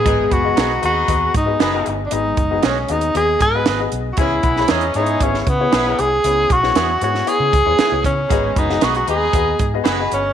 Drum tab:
HH |x-x-x-x-x-x-x-x-|x-x-x-xxx-x-x-x-|x-x-xxxxx-x-x-x-|x-x-x-x-x-x-x-x-|
SD |----o-------o---|----o-------o---|---oo----o--o---|---oo--o----o---|
BD |o-o-----o-o-----|--o-------o-----|o-o-----o-o-----|--o-------o---o-|

HH |x-x-xxx-x-x-x-x-|
SD |---oo-------o---|
BD |o-o-----o-o-----|